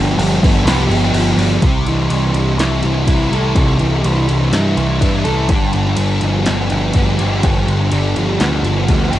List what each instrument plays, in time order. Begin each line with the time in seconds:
Already playing: picked electric bass G1, distorted electric guitar G2 F3 G3 B3
0.18 picked electric bass G1, distorted electric guitar F3, crash
0.43 picked electric bass G1, distorted electric guitar B3, kick, crash
0.65 picked electric bass C2, distorted electric guitar G4, snare, crash
0.89 picked electric bass G1, crash
0.93 distorted electric guitar B3
1.04 snare
1.13 picked electric bass G1, distorted electric guitar F3, crash
1.37 picked electric bass G1, distorted electric guitar G3, crash
1.62 picked electric bass C2, distorted electric guitar C3, kick, ride
1.85 picked electric bass C2, distorted electric guitar E3, ride
2.10 picked electric bass C2, distorted electric guitar G3, ride
2.33 picked electric bass C2, distorted electric guitar E3, ride
2.58 picked electric bass C2, distorted electric guitar E4, snare, ride
2.83 picked electric bass C2, distorted electric guitar E3, ride
3.07 picked electric bass C2, distorted electric guitar E4, kick, ride
3.31 picked electric bass C2, distorted electric guitar A4, ride
3.55 picked electric bass C2, distorted electric guitar C3, kick, ride
3.79 picked electric bass C2, distorted electric guitar E3, ride
4.04 picked electric bass C2, distorted electric guitar G3, ride
4.27 picked electric bass C2, distorted electric guitar E3, ride
4.52 picked electric bass G2, distorted electric guitar E4, snare, ride
4.76 picked electric bass C2, distorted electric guitar E3, ride
5.00 picked electric bass G2, distorted electric guitar E4, kick, ride
5.24 picked electric bass C2, distorted electric guitar A4, ride
5.48 picked electric bass G1, distorted electric guitar G2, kick, ride
5.73 picked electric bass G1, distorted electric guitar D3, ride
5.86 snare
5.96 picked electric bass G1, distorted electric guitar G3, ride
6.21 picked electric bass G1, distorted electric guitar F3, ride
6.45 picked electric bass G1, distorted electric guitar B3, snare, ride
6.70 picked electric bass G1, distorted electric guitar F3, ride
6.93 picked electric bass G1, distorted electric guitar B3, kick, ride
7.19 picked electric bass G1, distorted electric guitar G4, ride
7.43 picked electric bass G1, distorted electric guitar G2, kick, ride
7.67 picked electric bass G1, distorted electric guitar D3, ride
7.91 picked electric bass G1, distorted electric guitar G3, ride
8.16 picked electric bass G1, distorted electric guitar F3, ride
8.40 picked electric bass D2, distorted electric guitar B3, snare, ride
8.63 picked electric bass G1, distorted electric guitar F3, ride
8.87 picked electric bass D2, distorted electric guitar B3, kick, ride
9.10 picked electric bass G1, distorted electric guitar G4, ride